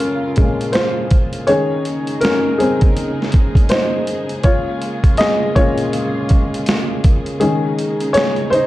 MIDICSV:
0, 0, Header, 1, 4, 480
1, 0, Start_track
1, 0, Key_signature, -5, "minor"
1, 0, Tempo, 740741
1, 958, Time_signature, 4, 2, 24, 8
1, 5616, End_track
2, 0, Start_track
2, 0, Title_t, "Upright piano"
2, 0, Program_c, 0, 0
2, 0, Control_c, 0, 64, 127
2, 0, Note_on_c, 0, 46, 49
2, 0, Note_on_c, 0, 56, 50
2, 0, Note_on_c, 0, 61, 69
2, 0, Note_on_c, 0, 65, 65
2, 0, Note_on_c, 0, 68, 75
2, 0, Note_on_c, 0, 69, 61
2, 0, Note_on_c, 0, 70, 96
2, 0, Note_on_c, 0, 73, 83
2, 233, Note_off_c, 0, 61, 0
2, 238, Note_off_c, 0, 46, 0
2, 238, Note_on_c, 0, 46, 49
2, 240, Note_off_c, 0, 56, 0
2, 240, Note_on_c, 0, 56, 46
2, 243, Note_on_c, 0, 61, 46
2, 454, Note_off_c, 0, 46, 0
2, 455, Note_off_c, 0, 56, 0
2, 457, Note_off_c, 0, 61, 0
2, 470, Note_on_c, 0, 72, 88
2, 483, Note_off_c, 0, 65, 0
2, 483, Note_on_c, 0, 65, 64
2, 497, Note_off_c, 0, 70, 0
2, 935, Note_off_c, 0, 65, 0
2, 952, Note_off_c, 0, 73, 0
2, 952, Note_on_c, 0, 73, 90
2, 958, Note_on_c, 0, 51, 55
2, 960, Note_on_c, 0, 56, 48
2, 965, Note_on_c, 0, 61, 59
2, 967, Note_off_c, 0, 69, 0
2, 967, Control_c, 0, 64, 0
2, 968, Note_off_c, 0, 68, 0
2, 968, Note_off_c, 0, 72, 0
2, 968, Note_on_c, 0, 68, 71
2, 1077, Control_c, 0, 64, 127
2, 1409, Note_off_c, 0, 73, 0
2, 1417, Note_off_c, 0, 68, 0
2, 1430, Note_on_c, 0, 70, 88
2, 1434, Note_off_c, 0, 61, 0
2, 1444, Note_on_c, 0, 61, 65
2, 1652, Note_off_c, 0, 51, 0
2, 1653, Note_off_c, 0, 56, 0
2, 1657, Note_off_c, 0, 70, 0
2, 1665, Note_off_c, 0, 61, 0
2, 1673, Note_on_c, 0, 68, 83
2, 1686, Note_on_c, 0, 60, 67
2, 2370, Note_off_c, 0, 68, 0
2, 2376, Note_off_c, 0, 60, 0
2, 2396, Note_on_c, 0, 72, 97
2, 2408, Note_on_c, 0, 63, 76
2, 2851, Note_off_c, 0, 72, 0
2, 2857, Note_off_c, 0, 63, 0
2, 2874, Note_on_c, 0, 73, 88
2, 2885, Control_c, 0, 64, 0
2, 2886, Note_on_c, 0, 65, 72
2, 3009, Control_c, 0, 64, 127
2, 3336, Note_off_c, 0, 65, 0
2, 3356, Note_on_c, 0, 75, 109
2, 3366, Note_on_c, 0, 68, 71
2, 3371, Note_off_c, 0, 73, 0
2, 3410, Note_off_c, 0, 75, 0
2, 3419, Note_off_c, 0, 68, 0
2, 3600, Note_on_c, 0, 46, 57
2, 3600, Note_on_c, 0, 73, 101
2, 3605, Note_on_c, 0, 56, 52
2, 3609, Note_on_c, 0, 61, 61
2, 3610, Note_on_c, 0, 65, 72
2, 4293, Note_off_c, 0, 46, 0
2, 4295, Note_off_c, 0, 56, 0
2, 4297, Note_off_c, 0, 61, 0
2, 4533, Note_off_c, 0, 73, 0
2, 4538, Note_off_c, 0, 65, 0
2, 4795, Note_on_c, 0, 68, 88
2, 4799, Note_on_c, 0, 51, 55
2, 4804, Note_on_c, 0, 56, 44
2, 4807, Note_on_c, 0, 61, 64
2, 4808, Control_c, 0, 64, 0
2, 4935, Control_c, 0, 64, 127
2, 5140, Note_off_c, 0, 51, 0
2, 5142, Note_off_c, 0, 56, 0
2, 5257, Note_off_c, 0, 61, 0
2, 5269, Note_on_c, 0, 73, 96
2, 5276, Note_off_c, 0, 68, 0
2, 5286, Note_on_c, 0, 68, 75
2, 5324, Note_off_c, 0, 73, 0
2, 5339, Note_off_c, 0, 68, 0
2, 5511, Note_on_c, 0, 72, 99
2, 5528, Note_on_c, 0, 63, 70
2, 5616, Note_off_c, 0, 63, 0
2, 5616, Note_off_c, 0, 72, 0
2, 5616, End_track
3, 0, Start_track
3, 0, Title_t, "String section"
3, 0, Program_c, 1, 48
3, 0, Note_on_c, 1, 49, 69
3, 0, Note_on_c, 1, 56, 62
3, 0, Note_on_c, 1, 58, 58
3, 0, Note_on_c, 1, 65, 70
3, 0, Note_on_c, 1, 68, 72
3, 939, Note_off_c, 1, 49, 0
3, 939, Note_off_c, 1, 65, 0
3, 956, Note_on_c, 1, 49, 71
3, 958, Note_on_c, 1, 63, 70
3, 2858, Note_off_c, 1, 49, 0
3, 2859, Note_off_c, 1, 63, 0
3, 2882, Note_on_c, 1, 49, 81
3, 2882, Note_on_c, 1, 65, 61
3, 4781, Note_off_c, 1, 65, 0
3, 4801, Note_on_c, 1, 63, 64
3, 5616, Note_off_c, 1, 49, 0
3, 5616, Note_off_c, 1, 56, 0
3, 5616, Note_off_c, 1, 58, 0
3, 5616, Note_off_c, 1, 63, 0
3, 5616, Note_off_c, 1, 68, 0
3, 5616, End_track
4, 0, Start_track
4, 0, Title_t, "Drums"
4, 1, Note_on_c, 9, 42, 79
4, 66, Note_off_c, 9, 42, 0
4, 233, Note_on_c, 9, 42, 64
4, 245, Note_on_c, 9, 36, 82
4, 298, Note_off_c, 9, 42, 0
4, 310, Note_off_c, 9, 36, 0
4, 394, Note_on_c, 9, 42, 52
4, 459, Note_off_c, 9, 42, 0
4, 473, Note_on_c, 9, 42, 74
4, 488, Note_on_c, 9, 38, 94
4, 538, Note_off_c, 9, 42, 0
4, 553, Note_off_c, 9, 38, 0
4, 716, Note_on_c, 9, 42, 74
4, 721, Note_on_c, 9, 36, 109
4, 781, Note_off_c, 9, 42, 0
4, 786, Note_off_c, 9, 36, 0
4, 860, Note_on_c, 9, 42, 54
4, 925, Note_off_c, 9, 42, 0
4, 956, Note_on_c, 9, 42, 66
4, 1020, Note_off_c, 9, 42, 0
4, 1200, Note_on_c, 9, 42, 53
4, 1265, Note_off_c, 9, 42, 0
4, 1343, Note_on_c, 9, 42, 48
4, 1408, Note_off_c, 9, 42, 0
4, 1435, Note_on_c, 9, 42, 69
4, 1456, Note_on_c, 9, 38, 103
4, 1499, Note_off_c, 9, 42, 0
4, 1521, Note_off_c, 9, 38, 0
4, 1686, Note_on_c, 9, 42, 66
4, 1751, Note_off_c, 9, 42, 0
4, 1822, Note_on_c, 9, 42, 54
4, 1827, Note_on_c, 9, 36, 111
4, 1887, Note_off_c, 9, 42, 0
4, 1892, Note_off_c, 9, 36, 0
4, 1922, Note_on_c, 9, 42, 75
4, 1987, Note_off_c, 9, 42, 0
4, 2088, Note_on_c, 9, 38, 36
4, 2152, Note_on_c, 9, 42, 65
4, 2153, Note_off_c, 9, 38, 0
4, 2164, Note_on_c, 9, 36, 85
4, 2216, Note_off_c, 9, 42, 0
4, 2229, Note_off_c, 9, 36, 0
4, 2302, Note_on_c, 9, 36, 88
4, 2312, Note_on_c, 9, 42, 49
4, 2366, Note_off_c, 9, 36, 0
4, 2377, Note_off_c, 9, 42, 0
4, 2392, Note_on_c, 9, 42, 81
4, 2408, Note_on_c, 9, 38, 106
4, 2457, Note_off_c, 9, 42, 0
4, 2473, Note_off_c, 9, 38, 0
4, 2639, Note_on_c, 9, 42, 74
4, 2704, Note_off_c, 9, 42, 0
4, 2782, Note_on_c, 9, 42, 46
4, 2847, Note_off_c, 9, 42, 0
4, 2874, Note_on_c, 9, 42, 63
4, 2879, Note_on_c, 9, 36, 104
4, 2939, Note_off_c, 9, 42, 0
4, 2944, Note_off_c, 9, 36, 0
4, 3121, Note_on_c, 9, 42, 58
4, 3186, Note_off_c, 9, 42, 0
4, 3264, Note_on_c, 9, 36, 80
4, 3264, Note_on_c, 9, 42, 54
4, 3329, Note_off_c, 9, 36, 0
4, 3329, Note_off_c, 9, 42, 0
4, 3353, Note_on_c, 9, 42, 73
4, 3375, Note_on_c, 9, 38, 108
4, 3418, Note_off_c, 9, 42, 0
4, 3439, Note_off_c, 9, 38, 0
4, 3603, Note_on_c, 9, 36, 98
4, 3605, Note_on_c, 9, 42, 64
4, 3668, Note_off_c, 9, 36, 0
4, 3670, Note_off_c, 9, 42, 0
4, 3743, Note_on_c, 9, 42, 53
4, 3808, Note_off_c, 9, 42, 0
4, 3844, Note_on_c, 9, 42, 81
4, 3909, Note_off_c, 9, 42, 0
4, 4076, Note_on_c, 9, 42, 66
4, 4088, Note_on_c, 9, 36, 86
4, 4141, Note_off_c, 9, 42, 0
4, 4152, Note_off_c, 9, 36, 0
4, 4239, Note_on_c, 9, 42, 53
4, 4304, Note_off_c, 9, 42, 0
4, 4318, Note_on_c, 9, 42, 87
4, 4333, Note_on_c, 9, 38, 114
4, 4383, Note_off_c, 9, 42, 0
4, 4398, Note_off_c, 9, 38, 0
4, 4562, Note_on_c, 9, 42, 76
4, 4565, Note_on_c, 9, 36, 93
4, 4626, Note_off_c, 9, 42, 0
4, 4630, Note_off_c, 9, 36, 0
4, 4706, Note_on_c, 9, 42, 47
4, 4771, Note_off_c, 9, 42, 0
4, 4800, Note_on_c, 9, 42, 68
4, 4865, Note_off_c, 9, 42, 0
4, 5045, Note_on_c, 9, 42, 62
4, 5110, Note_off_c, 9, 42, 0
4, 5187, Note_on_c, 9, 42, 48
4, 5252, Note_off_c, 9, 42, 0
4, 5276, Note_on_c, 9, 42, 84
4, 5298, Note_on_c, 9, 38, 95
4, 5341, Note_off_c, 9, 42, 0
4, 5362, Note_off_c, 9, 38, 0
4, 5420, Note_on_c, 9, 42, 35
4, 5485, Note_off_c, 9, 42, 0
4, 5526, Note_on_c, 9, 42, 60
4, 5591, Note_off_c, 9, 42, 0
4, 5616, End_track
0, 0, End_of_file